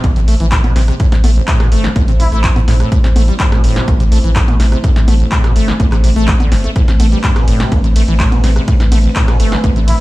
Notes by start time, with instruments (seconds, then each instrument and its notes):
Already playing: analog synth pad A3 C4 E4 C5
0.04 sub bass A1, acid bass A2, kick, closed hi-hat, high conga
0.16 acid bass C3, closed hi-hat
0.28 sub bass A1, acid bass A3, open hi-hat
0.40 sub bass A1, acid bass E3, closed hi-hat
0.52 acid bass A2, kick, clap, closed hi-hat
0.64 acid bass B2, closed hi-hat, high conga
0.76 sub bass A1, acid bass C3, snare, open hi-hat
0.88 acid bass C3, cross-stick, closed hi-hat
1.00 acid bass A2, kick, closed hi-hat
1.12 acid bass C3, snare, closed hi-hat
1.24 sub bass A1, acid bass A3, open hi-hat, high conga
1.36 acid bass A1, closed hi-hat
1.48 acid bass A2, kick, clap, closed hi-hat
1.60 acid bass B2, cross-stick, snare, closed hi-hat
1.72 sub bass G1, acid bass A3, open hi-hat
1.84 acid bass C3, snare, closed hi-hat
1.96 sub bass A1, acid bass A2, kick, closed hi-hat, high conga
2.08 acid bass C3, closed hi-hat
2.20 sub bass A1, acid bass A1, muted trumpet E4, open hi-hat
2.32 sub bass A1, acid bass A3, muted trumpet E4, closed hi-hat
2.44 acid bass A2, kick, clap, closed hi-hat
2.56 acid bass A2, closed hi-hat, high conga
2.68 sub bass A1, acid bass A2, snare, open hi-hat
2.80 acid bass A2, cross-stick, closed hi-hat
2.92 acid bass A2, kick, closed hi-hat
3.04 acid bass C3, snare, closed hi-hat
3.16 sub bass A1, acid bass A3, open hi-hat, high conga
3.28 acid bass G3, closed hi-hat
3.40 acid bass G2, kick, clap, closed hi-hat
3.52 acid bass B2, cross-stick, snare, closed hi-hat
3.64 sub bass G1, acid bass A2, open hi-hat
3.76 acid bass C3, snare, closed hi-hat
3.88 sub bass A1, acid bass A2, kick, closed hi-hat, high conga
4.00 acid bass C3, closed hi-hat
4.12 sub bass A1, acid bass A3, open hi-hat
4.24 sub bass A1, acid bass E3, closed hi-hat
4.36 acid bass A2, kick, clap, closed hi-hat
4.48 acid bass B2, closed hi-hat, high conga
4.60 sub bass A1, acid bass C3, snare, open hi-hat
4.72 acid bass C3, cross-stick, closed hi-hat
4.84 acid bass A2, kick, closed hi-hat
4.96 acid bass C3, snare, closed hi-hat
5.08 sub bass A1, acid bass A3, open hi-hat, high conga
5.20 acid bass A1, closed hi-hat
5.32 acid bass A2, kick, clap, closed hi-hat
5.44 acid bass B2, cross-stick, snare, closed hi-hat
5.56 sub bass G1, acid bass A3, open hi-hat
5.68 acid bass C3, snare, closed hi-hat
5.80 sub bass A1, acid bass A2, kick, closed hi-hat, high conga
5.92 acid bass C3, cross-stick, clap, closed hi-hat
6.04 sub bass A1, acid bass C3, open hi-hat
6.16 sub bass A1, acid bass A3, closed hi-hat
6.28 acid bass A2, kick, clap, closed hi-hat
6.40 acid bass D3, closed hi-hat, high conga
6.52 sub bass G1, acid bass A1, snare, open hi-hat
6.64 acid bass A3, closed hi-hat
6.76 acid bass A2, analog synth pad D4 B4, kick, closed hi-hat
6.88 acid bass C3, snare, closed hi-hat
7.00 sub bass A1, acid bass A3, open hi-hat, ride, high conga
7.12 acid bass G3, closed hi-hat
7.24 acid bass G2, kick, clap, closed hi-hat
7.36 acid bass B2, cross-stick, snare, closed hi-hat
7.48 sub bass G1, acid bass A2, open hi-hat, ride
7.60 acid bass C3, snare, closed hi-hat
7.72 sub bass A1, acid bass A2, kick, closed hi-hat, high conga
7.84 acid bass C3, closed hi-hat
7.96 sub bass A1, acid bass A3, open hi-hat, ride
8.08 sub bass A1, acid bass E3, closed hi-hat
8.20 acid bass A2, kick, clap, closed hi-hat
8.32 acid bass B2, closed hi-hat, high conga
8.44 sub bass A1, acid bass C3, snare, open hi-hat, ride
8.56 acid bass C3, cross-stick, closed hi-hat
8.68 acid bass A2, kick, closed hi-hat
8.80 acid bass A2, snare, closed hi-hat
8.92 sub bass A1, acid bass A3, open hi-hat, ride, high conga
9.04 acid bass A1, closed hi-hat
9.16 acid bass A2, kick, clap, closed hi-hat
9.28 acid bass B2, cross-stick, snare, closed hi-hat
9.40 sub bass G1, acid bass A3, open hi-hat, ride
9.52 acid bass C3, snare, closed hi-hat
9.64 sub bass A1, acid bass A2, kick, closed hi-hat, high conga
9.76 acid bass C3, closed hi-hat
9.88 acid bass A1, sub bass A1, muted trumpet E4, open hi-hat, ride